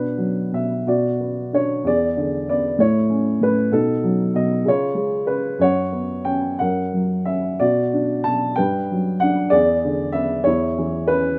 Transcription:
grand piano
Already playing: B2 D4 B4
0.18 F#3
0.52 B2 E5
0.86 B2 F#4 D5
1.20 B3
1.53 D4 C#5
1.84 E2 G#4 D5
2.17 D3
2.49 B3 D5
2.79 A2 E4 C#5
3.10 C#4
3.41 A2 B4
3.72 B2 D#4 A4
4.04 F#3
4.34 B2 D#5
4.65 C#3 F4 C#5
4.95 G#3
5.27 C#3 B4
5.59 F#2 C#5 F#5
5.92 B3
6.25 C#4 G5
6.59 F#2 A#4 F#5
6.93 F#3
7.25 C#4 E5
7.60 B2 F#4 D5
7.93 D4
8.24 B2 A5
8.56 G2 B4 G5
8.91 F#3
9.20 D4 F#5
9.50 E2 G#4 D5
9.85 D3
10.12 B3 E5
10.44 E2 E4 C#5
10.78 E3
11.08 C#4 B4

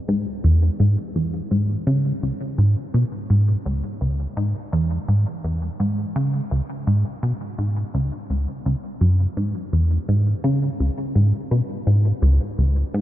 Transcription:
analog synth bass
0.08 G#2
0.44 E2
0.80 G#2
1.15 E2
1.51 G#2
1.87 C#3
2.23 C#2
2.58 G#2
2.94 B2
3.30 G#2
3.65 C#2
4.01 C#2
4.37 G#2
4.72 E2
5.08 G#2
5.44 E2
5.80 G#2
6.16 C#3
6.51 C#2
6.87 G#2
7.23 B2
7.58 G#2
7.94 C#2
8.30 C#2
8.65 C#2
9.01 F#2
9.37 G#2
9.73 E2
10.08 G#2
10.44 C#3
10.80 C#2
11.15 G#2
11.51 B2
11.87 G#2
12.22 C#2
12.58 C#2
12.94 G#2

